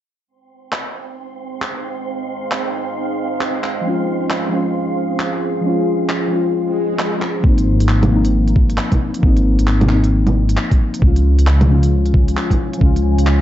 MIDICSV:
0, 0, Header, 1, 7, 480
1, 0, Start_track
1, 0, Tempo, 447761
1, 300, Time_signature, 4, 2, 24, 8
1, 14379, End_track
2, 0, Start_track
2, 0, Title_t, "Ambient pad"
2, 0, Program_c, 0, 92
2, 289, Note_on_c, 0, 56, 72
2, 291, Note_on_c, 0, 72, 66
2, 291, Note_on_c, 0, 77, 78
2, 292, Note_on_c, 0, 63, 65
2, 4097, Note_off_c, 0, 72, 0
2, 4098, Note_off_c, 0, 63, 0
2, 4138, Note_on_c, 0, 65, 70
2, 4142, Note_on_c, 0, 68, 70
2, 6013, Note_off_c, 0, 77, 0
2, 6045, Note_on_c, 0, 79, 82
2, 7932, Note_off_c, 0, 56, 0
2, 7941, Note_off_c, 0, 65, 0
2, 7943, Note_off_c, 0, 68, 0
2, 7954, Note_off_c, 0, 79, 0
2, 11826, Note_on_c, 0, 73, 69
2, 11828, Note_on_c, 0, 65, 74
2, 11829, Note_on_c, 0, 80, 82
2, 13724, Note_off_c, 0, 73, 0
2, 13736, Note_on_c, 0, 72, 70
2, 14379, Note_off_c, 0, 65, 0
2, 14379, Note_off_c, 0, 72, 0
2, 14379, Note_off_c, 0, 80, 0
2, 14379, End_track
3, 0, Start_track
3, 0, Title_t, "Synth texture"
3, 0, Program_c, 1, 99
3, 299, Note_on_c, 1, 60, 75
3, 302, Note_on_c, 1, 84, 77
3, 7992, Note_off_c, 1, 60, 0
3, 7993, Note_off_c, 1, 84, 0
3, 14379, End_track
4, 0, Start_track
4, 0, Title_t, "Synth keys"
4, 0, Program_c, 2, 88
4, 4085, Note_on_c, 2, 53, 70
4, 4116, Note_on_c, 2, 56, 63
4, 4146, Note_on_c, 2, 61, 65
4, 4171, Note_on_c, 2, 65, 78
4, 4367, Control_c, 2, 64, 127
4, 4798, Note_off_c, 2, 53, 0
4, 4810, Note_on_c, 2, 53, 78
4, 4827, Note_off_c, 2, 56, 0
4, 4838, Note_on_c, 2, 56, 67
4, 4841, Note_off_c, 2, 61, 0
4, 4854, Note_off_c, 2, 65, 0
4, 4864, Note_on_c, 2, 61, 71
4, 4894, Note_on_c, 2, 65, 82
4, 5999, Note_off_c, 2, 53, 0
4, 6012, Note_on_c, 2, 53, 88
4, 6022, Note_off_c, 2, 56, 0
4, 6035, Note_on_c, 2, 56, 83
4, 6041, Note_off_c, 2, 61, 0
4, 6055, Note_off_c, 2, 65, 0
4, 6065, Note_on_c, 2, 61, 84
4, 6095, Note_on_c, 2, 65, 97
4, 6711, Note_off_c, 2, 53, 0
4, 6724, Note_on_c, 2, 53, 74
4, 6743, Note_off_c, 2, 56, 0
4, 6756, Note_on_c, 2, 56, 68
4, 6761, Note_off_c, 2, 61, 0
4, 6776, Note_off_c, 2, 65, 0
4, 6782, Note_on_c, 2, 61, 69
4, 6815, Note_on_c, 2, 65, 80
4, 7923, Note_off_c, 2, 53, 0
4, 7936, Note_on_c, 2, 53, 72
4, 7947, Note_off_c, 2, 56, 0
4, 7960, Note_off_c, 2, 61, 0
4, 7965, Note_on_c, 2, 58, 66
4, 7976, Note_off_c, 2, 65, 0
4, 7992, Note_on_c, 2, 60, 63
4, 7993, Control_c, 2, 64, 0
4, 8022, Note_on_c, 2, 63, 81
4, 8157, Control_c, 2, 64, 127
4, 8642, Note_off_c, 2, 53, 0
4, 8655, Note_on_c, 2, 53, 76
4, 8671, Note_off_c, 2, 58, 0
4, 8684, Note_off_c, 2, 60, 0
4, 8687, Note_on_c, 2, 58, 70
4, 8699, Note_off_c, 2, 63, 0
4, 8716, Note_on_c, 2, 60, 70
4, 8741, Note_on_c, 2, 63, 85
4, 9837, Note_off_c, 2, 53, 0
4, 9850, Note_on_c, 2, 53, 90
4, 9866, Note_off_c, 2, 58, 0
4, 9879, Note_on_c, 2, 58, 84
4, 9887, Note_off_c, 2, 60, 0
4, 9899, Note_off_c, 2, 63, 0
4, 9911, Note_on_c, 2, 60, 81
4, 9935, Note_on_c, 2, 63, 100
4, 10567, Note_off_c, 2, 53, 0
4, 10580, Note_on_c, 2, 53, 76
4, 10588, Note_off_c, 2, 58, 0
4, 10604, Note_off_c, 2, 60, 0
4, 10609, Note_on_c, 2, 58, 68
4, 10616, Note_off_c, 2, 63, 0
4, 10635, Note_on_c, 2, 60, 70
4, 10662, Note_on_c, 2, 63, 84
4, 11767, Note_off_c, 2, 53, 0
4, 11780, Note_on_c, 2, 53, 72
4, 11793, Note_off_c, 2, 58, 0
4, 11806, Note_off_c, 2, 60, 0
4, 11807, Note_on_c, 2, 56, 65
4, 11820, Note_off_c, 2, 63, 0
4, 11834, Control_c, 2, 64, 0
4, 11837, Note_on_c, 2, 61, 66
4, 11866, Note_on_c, 2, 65, 81
4, 12021, Control_c, 2, 64, 127
4, 12482, Note_off_c, 2, 53, 0
4, 12495, Note_on_c, 2, 53, 76
4, 12512, Note_off_c, 2, 56, 0
4, 12527, Note_off_c, 2, 61, 0
4, 12527, Note_on_c, 2, 56, 70
4, 12541, Note_off_c, 2, 65, 0
4, 12552, Note_on_c, 2, 61, 72
4, 12584, Note_on_c, 2, 65, 86
4, 13678, Note_off_c, 2, 53, 0
4, 13690, Note_on_c, 2, 53, 92
4, 13703, Note_off_c, 2, 56, 0
4, 13716, Note_on_c, 2, 56, 85
4, 13725, Note_off_c, 2, 61, 0
4, 13741, Note_off_c, 2, 65, 0
4, 13744, Note_on_c, 2, 61, 83
4, 13776, Note_on_c, 2, 65, 103
4, 14379, Note_off_c, 2, 53, 0
4, 14379, Note_off_c, 2, 56, 0
4, 14379, Note_off_c, 2, 61, 0
4, 14379, Note_off_c, 2, 65, 0
4, 14379, End_track
5, 0, Start_track
5, 0, Title_t, "Detuned saw bass"
5, 0, Program_c, 3, 39
5, 7975, Note_on_c, 3, 32, 94
5, 8686, Note_off_c, 3, 32, 0
5, 8702, Note_on_c, 3, 32, 87
5, 9410, Note_off_c, 3, 32, 0
5, 9892, Note_on_c, 3, 32, 98
5, 10267, Note_off_c, 3, 32, 0
5, 10290, Note_on_c, 3, 32, 97
5, 10609, Note_off_c, 3, 32, 0
5, 10620, Note_on_c, 3, 32, 83
5, 11329, Note_off_c, 3, 32, 0
5, 11811, Note_on_c, 3, 37, 92
5, 12187, Note_off_c, 3, 37, 0
5, 12202, Note_on_c, 3, 37, 93
5, 12525, Note_off_c, 3, 37, 0
5, 12534, Note_on_c, 3, 37, 81
5, 13245, Note_off_c, 3, 37, 0
5, 13732, Note_on_c, 3, 37, 97
5, 14107, Note_off_c, 3, 37, 0
5, 14126, Note_on_c, 3, 37, 93
5, 14379, Note_off_c, 3, 37, 0
5, 14379, End_track
6, 0, Start_track
6, 0, Title_t, "Swell"
6, 0, Program_c, 4, 103
6, 7015, Note_on_c, 4, 60, 70
6, 7978, Note_off_c, 4, 60, 0
6, 14379, End_track
7, 0, Start_track
7, 0, Title_t, "Drums"
7, 777, Note_on_c, 9, 39, 89
7, 885, Note_off_c, 9, 39, 0
7, 1738, Note_on_c, 9, 39, 89
7, 1845, Note_off_c, 9, 39, 0
7, 2698, Note_on_c, 9, 39, 102
7, 2805, Note_off_c, 9, 39, 0
7, 3657, Note_on_c, 9, 39, 99
7, 3765, Note_off_c, 9, 39, 0
7, 3901, Note_on_c, 9, 39, 61
7, 4008, Note_off_c, 9, 39, 0
7, 4614, Note_on_c, 9, 39, 101
7, 4722, Note_off_c, 9, 39, 0
7, 5571, Note_on_c, 9, 39, 100
7, 5678, Note_off_c, 9, 39, 0
7, 6532, Note_on_c, 9, 39, 101
7, 6640, Note_off_c, 9, 39, 0
7, 7496, Note_on_c, 9, 39, 96
7, 7603, Note_off_c, 9, 39, 0
7, 7741, Note_on_c, 9, 39, 62
7, 7848, Note_off_c, 9, 39, 0
7, 7974, Note_on_c, 9, 36, 112
7, 8081, Note_off_c, 9, 36, 0
7, 8125, Note_on_c, 9, 42, 45
7, 8232, Note_off_c, 9, 42, 0
7, 8365, Note_on_c, 9, 42, 55
7, 8455, Note_on_c, 9, 39, 101
7, 8473, Note_off_c, 9, 42, 0
7, 8562, Note_off_c, 9, 39, 0
7, 8605, Note_on_c, 9, 42, 30
7, 8605, Note_on_c, 9, 61, 60
7, 8713, Note_off_c, 9, 42, 0
7, 8713, Note_off_c, 9, 61, 0
7, 8841, Note_on_c, 9, 42, 56
7, 8948, Note_off_c, 9, 42, 0
7, 9086, Note_on_c, 9, 42, 30
7, 9175, Note_on_c, 9, 36, 103
7, 9193, Note_off_c, 9, 42, 0
7, 9282, Note_off_c, 9, 36, 0
7, 9322, Note_on_c, 9, 42, 52
7, 9409, Note_on_c, 9, 39, 97
7, 9430, Note_off_c, 9, 42, 0
7, 9517, Note_off_c, 9, 39, 0
7, 9559, Note_on_c, 9, 42, 43
7, 9559, Note_on_c, 9, 61, 36
7, 9563, Note_on_c, 9, 36, 59
7, 9667, Note_off_c, 9, 42, 0
7, 9667, Note_off_c, 9, 61, 0
7, 9670, Note_off_c, 9, 36, 0
7, 9801, Note_on_c, 9, 42, 53
7, 9895, Note_on_c, 9, 36, 116
7, 9908, Note_off_c, 9, 42, 0
7, 10002, Note_off_c, 9, 36, 0
7, 10041, Note_on_c, 9, 42, 45
7, 10148, Note_off_c, 9, 42, 0
7, 10279, Note_on_c, 9, 42, 58
7, 10371, Note_on_c, 9, 39, 105
7, 10387, Note_off_c, 9, 42, 0
7, 10479, Note_off_c, 9, 39, 0
7, 10519, Note_on_c, 9, 42, 31
7, 10519, Note_on_c, 9, 61, 59
7, 10605, Note_on_c, 9, 39, 61
7, 10626, Note_off_c, 9, 42, 0
7, 10626, Note_off_c, 9, 61, 0
7, 10712, Note_off_c, 9, 39, 0
7, 10760, Note_on_c, 9, 42, 57
7, 10867, Note_off_c, 9, 42, 0
7, 11005, Note_on_c, 9, 42, 29
7, 11005, Note_on_c, 9, 61, 48
7, 11113, Note_off_c, 9, 42, 0
7, 11113, Note_off_c, 9, 61, 0
7, 11246, Note_on_c, 9, 42, 53
7, 11334, Note_on_c, 9, 39, 101
7, 11353, Note_off_c, 9, 42, 0
7, 11441, Note_off_c, 9, 39, 0
7, 11485, Note_on_c, 9, 36, 105
7, 11487, Note_on_c, 9, 42, 43
7, 11593, Note_off_c, 9, 36, 0
7, 11594, Note_off_c, 9, 42, 0
7, 11727, Note_on_c, 9, 42, 56
7, 11814, Note_on_c, 9, 36, 113
7, 11834, Note_off_c, 9, 42, 0
7, 11921, Note_off_c, 9, 36, 0
7, 11965, Note_on_c, 9, 42, 45
7, 12073, Note_off_c, 9, 42, 0
7, 12206, Note_on_c, 9, 42, 56
7, 12297, Note_on_c, 9, 39, 104
7, 12313, Note_off_c, 9, 42, 0
7, 12405, Note_off_c, 9, 39, 0
7, 12445, Note_on_c, 9, 42, 32
7, 12445, Note_on_c, 9, 61, 56
7, 12552, Note_off_c, 9, 42, 0
7, 12552, Note_off_c, 9, 61, 0
7, 12682, Note_on_c, 9, 42, 53
7, 12789, Note_off_c, 9, 42, 0
7, 12924, Note_on_c, 9, 42, 30
7, 13014, Note_on_c, 9, 36, 108
7, 13031, Note_off_c, 9, 42, 0
7, 13121, Note_off_c, 9, 36, 0
7, 13166, Note_on_c, 9, 42, 50
7, 13263, Note_on_c, 9, 39, 103
7, 13274, Note_off_c, 9, 42, 0
7, 13370, Note_off_c, 9, 39, 0
7, 13405, Note_on_c, 9, 36, 61
7, 13412, Note_on_c, 9, 42, 44
7, 13412, Note_on_c, 9, 61, 34
7, 13512, Note_off_c, 9, 36, 0
7, 13520, Note_off_c, 9, 42, 0
7, 13520, Note_off_c, 9, 61, 0
7, 13651, Note_on_c, 9, 42, 55
7, 13735, Note_on_c, 9, 36, 117
7, 13758, Note_off_c, 9, 42, 0
7, 13842, Note_off_c, 9, 36, 0
7, 13895, Note_on_c, 9, 42, 43
7, 14003, Note_off_c, 9, 42, 0
7, 14134, Note_on_c, 9, 42, 55
7, 14223, Note_on_c, 9, 39, 108
7, 14241, Note_off_c, 9, 42, 0
7, 14331, Note_off_c, 9, 39, 0
7, 14379, End_track
0, 0, End_of_file